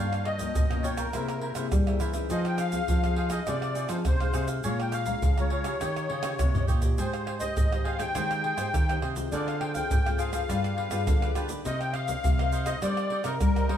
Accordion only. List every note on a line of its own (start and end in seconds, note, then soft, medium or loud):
0.00 0.27 F5 medium
0.26 0.86 D#5 medium
0.84 0.99 C#5 medium
0.98 1.53 A#4 medium
2.31 2.44 D#5 medium
2.46 2.61 G5 medium
2.59 3.29 F5 loud
3.32 3.47 D#5 medium
3.48 3.89 D5 medium
3.90 3.97 C5 medium
4.07 4.47 C5 medium
4.66 4.79 C#5 medium
4.81 4.94 G5 medium
4.94 5.39 F5 medium
5.40 5.51 C#5 medium
5.52 6.65 C#5 medium
6.98 7.44 C5 medium
7.40 7.86 D#5 medium
7.84 8.00 F5 medium
7.98 8.98 G5 loud
9.32 9.47 D5 medium
9.48 9.61 F5 medium
9.60 9.73 G5 medium
9.74 10.20 G5 medium
10.19 11.32 F5 medium
11.65 11.79 D#5 medium
11.80 11.94 G5 loud
11.93 12.69 F5 loud
12.66 12.80 D#5 medium
12.83 13.28 D5 loud
13.25 13.39 A#4 medium
13.40 13.77 A#4 medium